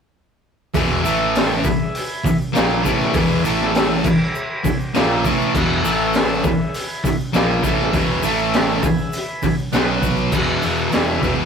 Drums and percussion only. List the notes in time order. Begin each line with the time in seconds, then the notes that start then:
0.74 kick, open hi-hat, shaker
1.05 open hi-hat, shaker
1.35 snare, open hi-hat, shaker
1.64 kick, open hi-hat, shaker
1.95 open hi-hat, shaker
2.25 kick, open hi-hat, shaker
2.42 shaker
2.55 snare, open hi-hat, shaker
2.84 kick, open hi-hat, shaker
3.01 snare, shaker
3.14 kick, open hi-hat, shaker
3.44 open hi-hat, shaker
3.61 snare
3.75 snare, open hi-hat, shaker
4.04 kick, crash, shaker
4.35 shaker
4.65 kick, open hi-hat, shaker
4.80 shaker
4.94 snare, open hi-hat, shaker
5.25 kick, open hi-hat, shaker
5.41 shaker
5.55 kick, crash, shaker
5.85 open hi-hat, shaker
6.13 snare, open hi-hat, shaker
6.44 kick, open hi-hat, shaker
6.74 open hi-hat, shaker
7.04 kick, open hi-hat, shaker
7.21 shaker
7.34 snare, open hi-hat, shaker
7.63 kick, open hi-hat, shaker
7.80 snare
7.93 kick, open hi-hat, shaker
8.23 open hi-hat, shaker
8.38 shaker
8.53 snare, open hi-hat, shaker
8.83 kick, open hi-hat, shaker
8.98 shaker
9.12 open hi-hat, shaker
9.43 kick, open hi-hat, shaker
9.59 shaker
9.73 snare, open hi-hat, shaker
10.02 kick, open hi-hat, shaker
10.17 shaker
10.32 kick, crash, shaker
10.47 shaker
10.62 open hi-hat, shaker
10.77 shaker
10.92 snare, open hi-hat, shaker
11.07 shaker
11.22 kick, open hi-hat, shaker